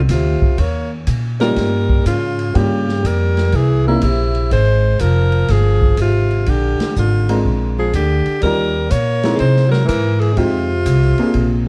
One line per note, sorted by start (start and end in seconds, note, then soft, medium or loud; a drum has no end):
0.09 0.39 D2 medium
0.09 0.62 C3 medium
0.09 0.61 F4 medium
0.09 kick soft
0.09 snare soft
0.09 hi-hat pedal medium
0.09 ride medium
0.42 muted upright bass stroke soft
0.42 kick medium
0.58 1.06 D#2 medium
0.58 0.92 A#3 medium
0.58 0.91 C#5 medium
0.58 kick soft
0.58 ride medium
1.07 1.55 A#2 medium
1.07 kick soft
1.07 hi-hat pedal medium
1.07 ride medium
1.40 2.02 G3 medium
1.40 2.02 A#3 medium
1.40 2.02 C#4 medium
1.40 2.03 D#4 medium
1.40 2.03 F4 medium
1.40 2.02 A#4 loud
1.40 snare soft
1.40 ride soft
1.56 2.04 G2 medium
1.56 kick soft
1.56 snare soft
1.56 ride medium
1.90 kick medium
2.06 2.53 G#2 medium
2.06 2.56 C#3 medium
2.06 2.59 F4 medium
2.06 kick soft
2.06 hi-hat pedal medium
2.06 ride medium
2.39 ride soft
2.54 3.02 G2 medium
2.54 3.05 C#3 medium
2.54 3.30 G3 medium
2.54 3.30 A#3 medium
2.54 3.30 C#4 medium
2.54 3.30 F4 medium
2.54 3.30 G4 medium
2.54 3.08 G4 medium
2.54 kick soft
2.54 ride medium
2.89 snare soft
3.04 3.52 F2 medium
3.04 3.56 G3 medium
3.04 3.58 A#4 medium
3.04 kick soft
3.04 hi-hat pedal medium
3.04 ride medium
3.37 snare soft
3.37 ride soft
3.52 4.00 C2 medium
3.52 3.86 E3 medium
3.52 kick soft
3.52 ride medium
3.56 3.87 G#4 loud
3.87 4.02 C#3 medium
3.87 4.01 A#3 medium
3.87 4.01 C4 medium
3.87 4.01 D#4 medium
3.87 4.01 E4 medium
3.87 4.02 E4 medium
3.87 4.01 A#4 medium
4.02 4.50 A#1 medium
4.02 4.48 C3 medium
4.02 4.48 E4 medium
4.02 kick soft
4.02 hi-hat pedal medium
4.02 ride medium
4.35 ride soft
4.51 4.99 G#1 medium
4.51 5.02 G#3 loud
4.51 5.02 C5 loud
4.51 kick soft
4.51 ride medium
4.99 5.48 F1 medium
4.99 5.48 F3 medium
4.99 5.53 A#4 loud
4.99 kick soft
4.99 hi-hat pedal medium
4.99 ride medium
5.32 ride soft
5.48 5.96 G1 medium
5.48 5.98 F3 medium
5.48 5.99 G#4 medium
5.48 kick soft
5.48 snare soft
5.48 ride medium
5.82 kick medium
5.97 6.45 G#1 medium
5.97 6.49 C3 medium
5.97 kick soft
5.97 hi-hat pedal medium
5.97 ride medium
6.02 6.51 F4 medium
6.31 ride soft
6.46 6.77 A#1 medium
6.46 6.96 D3 medium
6.46 6.97 G4 medium
6.46 kick soft
6.46 ride medium
6.80 muted upright bass stroke soft
6.80 snare medium
6.80 ride medium
6.96 7.44 G#1 medium
6.96 7.40 D3 medium
6.96 7.41 F4 medium
6.96 kick soft
6.96 hi-hat pedal medium
7.29 7.91 G#3 medium
7.29 7.91 C4 medium
7.29 7.91 D4 medium
7.29 7.91 F4 medium
7.29 7.91 A#4 medium
7.29 ride medium
7.45 7.92 A#1 medium
7.45 kick soft
7.78 7.93 F3 medium
7.78 7.93 G#4 medium
7.93 8.24 D2 medium
7.93 8.40 D3 medium
7.93 8.40 G4 medium
7.93 kick soft
7.93 hi-hat pedal soft
7.93 ride medium
8.26 muted upright bass stroke soft
8.26 ride soft
8.41 8.90 D#2 medium
8.41 8.91 G3 medium
8.41 8.72 G3 medium
8.41 8.73 C#4 medium
8.41 8.73 D#4 medium
8.41 8.73 F4 medium
8.41 8.93 A#4 loud
8.41 kick soft
8.41 ride medium
8.45 8.73 A#4 medium
8.90 9.39 A#2 medium
8.90 9.35 A#3 medium
8.90 9.39 C#5 loud
8.90 kick soft
8.90 hi-hat pedal medium
8.90 ride medium
9.23 9.86 G#3 medium
9.23 9.86 C4 medium
9.23 9.86 D#4 medium
9.23 9.86 E4 medium
9.23 9.86 A#4 medium
9.23 snare medium
9.23 ride medium
9.36 9.87 C3 medium
9.36 9.67 G#3 medium
9.36 ride medium
9.40 9.70 C5 medium
9.40 kick soft
9.56 snare soft
9.68 9.84 F#3 medium
9.72 9.87 A#4 loud
9.72 snare soft
9.85 10.36 G#2 medium
9.85 10.17 E3 medium
9.85 10.22 A#4 medium
9.85 kick soft
9.85 hi-hat pedal medium
9.85 ride medium
10.17 10.35 E3 medium
10.17 10.39 G#4 medium
10.21 ride soft
10.33 11.68 C3 medium
10.33 10.66 G#3 medium
10.33 10.67 C4 medium
10.33 ride medium
10.37 10.85 F2 medium
10.37 10.67 D#4 medium
10.37 11.68 F4 medium
10.37 10.67 F4 medium
10.37 10.67 G4 medium
10.37 kick soft
10.86 11.16 C2 medium
10.86 kick soft
10.86 hi-hat pedal medium
10.86 ride medium
11.18 11.68 A#3 medium
11.18 11.68 C4 medium
11.18 11.68 D4 medium
11.18 11.68 F4 medium
11.18 11.68 G#4 medium
11.18 muted upright bass stroke soft
11.18 ride soft
11.34 11.68 A#1 medium
11.34 kick soft
11.34 ride medium